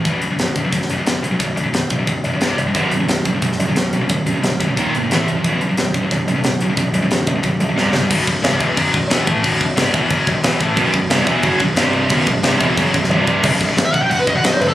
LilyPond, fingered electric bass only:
\new Staff \with { instrumentName = "Fingered electric bass" } { \clef bass \time 4/4 \tempo 4 = 179 b,,,4 b,,,8 b,,,8 b,,,8 b,,,8 b,,,8 b,,8 | b,,,8 b,,,8 b,,,8 b,,,8 b,,,8 b,,,8 c,,8 c,,8 | b,,,4 b,,,8 b,,,8 b,,,8 b,,,8 b,,,8 b,,8 | b,,,8 b,,,8 b,,,8 b,,,8 dis,,8 g,,8 a,,8 c,,8 |
b,,,4 b,,,8 b,,,8 b,,,8 b,,,8 b,,,8 b,,8 | b,,,8 b,,,8 b,,,8 b,,,8 b,,,8 b,,,8 c,,8 c,,8 | b,,,8 b,,,8 c,,8 e,,8 fis,,8 b,,,8 e,,8 a,,8 | b,,,8 b,,,8 c,,8 e,,8 fis,,8 b,,,8 e,,8 a,,8 |
b,,,8 b,,,8 c,,8 e,,8 fis,,8 b,,,8 c,,4 | b,,,8 b,,,8 c,,8 e,,8 fis,,8 b,,,8 c,,4 | b,,,8 b,,,8 b,,,4 fis,,8 b,,,8 b,,,8 fis,,8 | }